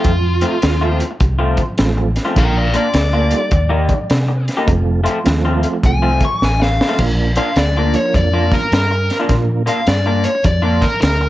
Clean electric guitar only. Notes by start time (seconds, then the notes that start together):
Already playing: F3 A3 C4 F4
0.42 F3 A3 C4 F4
0.62 muted clean electric guitar stroke
0.81 F3 A3 C4 F4
1.11 muted clean electric guitar stroke
1.21 muted clean electric guitar stroke
1.39 F3 A3 C4 F4
1.97 muted clean electric guitar stroke
2.25 F3 A3 C4 F4
2.74 A#2 A#3 D4 F4
2.94 muted clean electric guitar stroke
3.13 A#2 A#3 D4 F4
3.41 muted clean electric guitar stroke
3.52 muted clean electric guitar stroke
3.69 D#3 A#3 D#4 G4
4.28 muted clean electric guitar stroke
4.57 D#3 A#3 D#4 G4
5.04 F3 A3 C4 F4
5.26 muted clean electric guitar stroke
5.45 F3 A3 C4 F4
5.73 muted clean electric guitar stroke
5.84 muted clean electric guitar stroke
6.02 F3 A3 C4 F4
6.60 muted clean electric guitar stroke
6.89 F3 A3 C4 F4
7.37 A#2 A#3 D4 F4
7.58 muted clean electric guitar stroke
7.77 A#2 A#3 D4 F4
8.05 muted clean electric guitar stroke
8.15 muted clean electric guitar stroke
8.34 A#2 A#3 D4 F4
8.91 muted clean electric guitar stroke
9.20 A#2 A#3 D4 F4
9.66 A#2 A#3 D4 F4
9.87 muted clean electric guitar stroke
10.06 A#2 A#3 D4 F4
10.35 muted clean electric guitar stroke
10.44 muted clean electric guitar stroke
10.62 A#2 A#3 D4 F4
11.21 muted clean electric guitar stroke